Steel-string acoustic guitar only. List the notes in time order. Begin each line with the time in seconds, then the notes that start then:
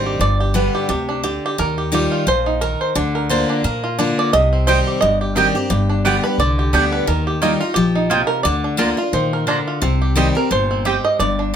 Already playing: G2 D#3 G3 C4 G4
0.21 G2
0.54 D3 G3 B3 G4
0.89 C3
1.24 D3
1.58 D#3
1.92 D#3 G3 D#4 F4
2.27 A#2
2.62 D#3
2.95 D3
3.29 D3 A#3 D4 F4
3.64 A#3
3.98 D3 A#3 D4 F4
4.33 C3
4.67 D#3 G3 C4 G4
5.02 G2
5.36 D#3 G3 C4 G4
5.55 C4 G4
5.70 G2
6.05 D3 G3 B3 G4
6.24 B3 G4
6.40 D3
6.73 D3 G3 B3 G4
7.07 D#3
7.42 D#3 G3 D#4 F4
7.61 D#4 F4
7.76 F3
8.11 C3
8.45 D3
8.77 D3 A#3 D4 F4
8.97 D4 F4
9.13 D#3
9.47 D3
9.82 C3
10.16 D#3 G3 C4 G4
10.35 C4 G4
10.51 A#2
10.85 G#3
11.20 G2